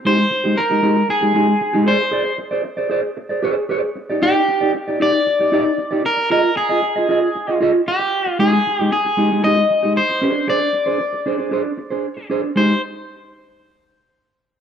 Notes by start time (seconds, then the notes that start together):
0.05 G#3 D#4 G4 C5
0.18 muted clean electric guitar stroke
0.30 muted clean electric guitar stroke
0.44 G#3 D#4 G4
0.57 A#4, muted clean electric guitar stroke
0.70 G#3 D#4 G4
0.82 G#3 D#4 G4
0.96 muted clean electric guitar stroke
1.09 G#4, muted clean electric guitar stroke
1.21 G#3 D#4 G4
1.34 G#3 D#4 G4
1.48 muted clean electric guitar stroke
1.61 muted clean electric guitar stroke
1.73 G#3 D#4 G4
1.86 G#4 C5 D5
1.99 muted clean electric guitar stroke
2.11 G#4 C5 D5
2.25 muted clean electric guitar stroke
2.38 muted clean electric guitar stroke
2.51 G#4 C5 D5
2.64 muted clean electric guitar stroke
2.77 G#4 C5 D5
2.90 G#4 C5 D5
3.03 muted clean electric guitar stroke
3.17 muted clean electric guitar stroke
3.29 G#4 C5 D5
3.43 G#4 C5 D5
3.56 muted clean electric guitar stroke
3.69 G#4 C5 D5
3.83 muted clean electric guitar stroke
3.96 muted clean electric guitar stroke
4.10 D#4 G4 D5
4.22 D#4 G4 D5
4.35 muted clean electric guitar stroke
4.48 muted clean electric guitar stroke
4.61 D#4 G4 D5
4.75 muted clean electric guitar stroke
4.88 D#4 G4 D5
5.00 D#4 G4 D5
5.14 muted clean electric guitar stroke
5.27 muted clean electric guitar stroke
5.39 D#4 G4 D5
5.52 D#4 G4 D5
5.65 muted clean electric guitar stroke
5.78 muted clean electric guitar stroke
5.91 D#4 G4 D5
6.04 A#4, muted clean electric guitar stroke
6.17 muted clean electric guitar stroke
6.30 F4 G#4 A#4 D#5
6.44 muted clean electric guitar stroke
6.56 G#4, muted clean electric guitar stroke
6.69 F4 G#4 D#5
6.82 muted clean electric guitar stroke
6.96 F4 G#4 D#5
7.09 F4 G#4 D#5
7.22 muted clean electric guitar stroke
7.35 muted clean electric guitar stroke
7.48 F4 G#4 D#5
7.61 F4 G#4 D#5
7.74 muted clean electric guitar stroke
7.88 G4, muted clean electric guitar stroke
7.99 muted clean electric guitar stroke
8.26 muted clean electric guitar stroke
8.39 G#3 D#4 G4 G#4
8.53 muted clean electric guitar stroke
8.67 muted clean electric guitar stroke
8.79 G#3 D#4 G4
8.92 G#4, muted clean electric guitar stroke
9.05 muted clean electric guitar stroke
9.17 G#3 D#4 G4
9.31 G#3 D#4 G4
9.44 G#3 D#4 G4 D#5
9.57 muted clean electric guitar stroke
9.70 muted clean electric guitar stroke
9.83 G#3 D#4 G4
9.97 C5
10.10 muted clean electric guitar stroke
10.22 D4 G#4 C5
10.34 muted clean electric guitar stroke
10.47 D4 G#4 C5 D5
10.60 muted clean electric guitar stroke
10.73 muted clean electric guitar stroke
10.86 D4 G#4 C5
11.00 muted clean electric guitar stroke
11.13 muted clean electric guitar stroke
11.26 D4 G#4 C5
11.38 D4 G#4 C5
11.51 D4 G#4 C5
11.64 muted clean electric guitar stroke
11.77 muted clean electric guitar stroke
11.90 D4 G#4 C5
12.17 muted clean electric guitar stroke
12.30 D4 G#4 C5
12.43 muted clean electric guitar stroke
12.56 G#3 D#4 G4 C5